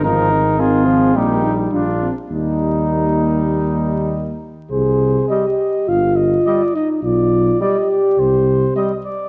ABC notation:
X:1
M:4/4
L:1/8
Q:1/4=104
K:Eb
V:1 name="Trumpet"
B2 A2 G2 F z | E6- E z | [K:Cm] c2 e2 f e d e | d2 e d c2 e d |]
V:2 name="Flugelhorn"
E2 F2 E2 D z | E6- E z | [K:Cm] z2 e2 z2 e2 | z2 d2 z2 e2 |]
V:3 name="French horn"
C2 C2 B, E D C | B,6- B, z | [K:Cm] A2 G2 F3 E | F2 G4- G z |]
V:4 name="Trombone" clef=bass
F, E, E, F, G,3 z | G,6- G, z | [K:Cm] z2 G,2 z2 G,2 | z2 G,2 z2 G,2 |]
V:5 name="Tuba" clef=bass
A,,,4 B,,,2 B,,, z | E,,6- E,, z | [K:Cm] C,,2 z2 G,,,2 z2 | =B,,,2 z2 C,,2 z2 |]